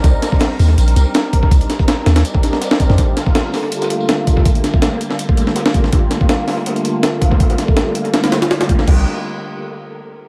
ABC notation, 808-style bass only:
X:1
M:4/4
L:1/16
Q:"Swing 16ths" 1/4=163
K:Cm
V:1 name="808-style bass" clef=bass
C,, z4 z E,,2 B,,,2 C,, z4 z | C,, z4 z E,,2 z6 z F,, | z16 | z16 |
z16 | z16 | C,,2 z12 z2 |]